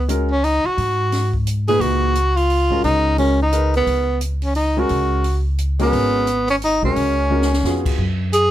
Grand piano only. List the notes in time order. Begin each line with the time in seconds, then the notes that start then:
0.08 G#3 C#4 F#4 A#4
1.68 A#2 D#4 G#4 B4
2.70 G#3 C#4 F#4 A#4
3.18 G#3 C#4 F#4 A#4
3.52 D#4 G#4 A#4 B4
4.77 G#3 C#4 F#4 A#4
5.79 G#3 C#4 F#4 A#4
6.83 G#3 C#4 F#4 A#4
7.30 G#3 C#4 F#4 A#4
7.65 B3 F4 F#4 G#4